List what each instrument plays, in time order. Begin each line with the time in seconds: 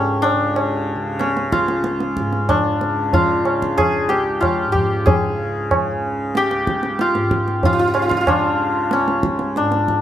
Already playing: tanpura C#2 G#2 C#3, santur C#4 F4 G4 G#4 A4
0.22 santur D4, tabla na
0.33 tanpura C#3
0.56 tabla na
0.96 tanpura C#3
1.19 santur C#4, tabla te
1.37 tabla te
1.52 santur F4, tabla ke
1.57 tanpura C#2
1.68 tabla te
1.84 tabla te
2.00 tabla te
2.17 tanpura G#2, tabla ke
2.33 tabla te
2.49 santur D4, tabla na, tabla ge
2.80 tanpura C#3, tabla te
3.13 santur F4, tabla tin, tabla ge
3.44 tanpura C#3, tabla na
3.62 tabla ke
3.78 santur G#4, tabla na, tabla ge
4.05 tanpura C#2, santur G4
4.10 tabla te
4.41 santur F4, tabla na, tabla ge
4.67 tanpura G#2
4.72 santur G4, tabla ge
5.06 santur G#4, tabla tin, tabla ge
5.30 tanpura C#3
5.71 tabla na, tabla ge
5.91 tanpura C#3
6.35 santur G4, tabla te
6.51 tanpura C#2, tabla te
6.67 tabla ke
6.83 tabla te
6.99 santur F4, tabla te
7.14 tanpura G#2, tabla te
7.31 tabla ke
7.48 tabla te
7.63 santur F4, tabla tin, tabla ge
7.73 tanpura C#3, santur F4
7.79 santur F4
7.88 santur F4
7.94 santur F4, tabla na
8.02 santur F4
8.09 santur F4, tabla ke
8.17 santur F4
8.27 santur D4, tabla na, tabla ge
8.39 tanpura C#3
8.91 santur C#4, tabla te
8.99 tanpura C#2
9.08 tabla te
9.23 tabla ke
9.39 tabla te
9.56 tanpura G#2, santur D4, tabla te
9.72 tabla te
9.88 tabla ke